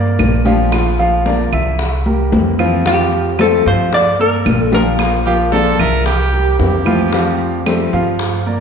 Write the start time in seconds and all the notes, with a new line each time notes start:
Already playing: G2 A#3 A#4 D5
0.19 A#1 F3 A#3 D4 G4, high bongo, low bongo, high conga, claves
0.45 F3 A#3 D4 F4 G4 F5, high bongo, high conga
0.72 F3 A#3 D4 F4, high bongo, high conga, claves
0.99 F3 F4 F5, high bongo, high conga
1.25 F3 A#3 D4 F4 A#4 D5, high bongo, high conga
1.52 C2 E5, high bongo, high conga, low conga, claves
1.79 muted nylon-string guitar stroke, high bongo, high conga
2.06 G3 G4 A#4, high conga
2.32 F2 E3 A#3 C4 E4, high bongo, low bongo, high conga
2.59 E3 F3 A#3 C4 E4 F4 F5, high bongo, low conga, claves
2.86 F3 G3 C4 F4 G4 F5, high bongo, high conga
3.13 high bongo, high conga
3.39 F3 G3 A3 C4 G4 A4 C5, high bongo, high conga, claves
3.65 G2 F3 F4 C5 F5, high bongo, high conga
3.93 D5, muted nylon-string guitar stroke, high bongo, high conga
4.19 A#3 A#4 D5, high conga
4.46 A#1 F3 A#3 D4 G4, high bongo, low bongo, high conga, claves
4.61 A4
4.72 F3 A#3 D4 F4 G4 A#4 F5, high bongo, high conga
4.99 F3 A#3 D4 F4, high bongo, high conga, claves
5.26 F3 F4 G4 F5, high bongo, high conga
5.52 F3 A#3 D4 F4 A4 A#4 D5, high bongo, high conga
5.79 C2 A#4 E5, high bongo, high conga, low conga, claves
6.06 G4, muted nylon-string guitar stroke, high bongo, high conga
6.33 G3 G4 A#4, high conga
6.59 F2 E3 A#3 C4 E4 G4, high bongo, low bongo, high conga
6.85 E3 F3 A#3 C4 E4 F4 F5, high bongo, high conga, claves
7.12 F3 G3 C4 F4 G4 F5, high bongo, high conga
7.40 high bongo, high conga
7.66 F3 G3 A3 C4 G4 A4 C5, high bongo, high conga, claves
7.93 G2 F3 F4 F5, high bongo, high conga
8.19 muted nylon-string guitar stroke, high bongo, high conga
8.46 A#3 A#4 D5, high conga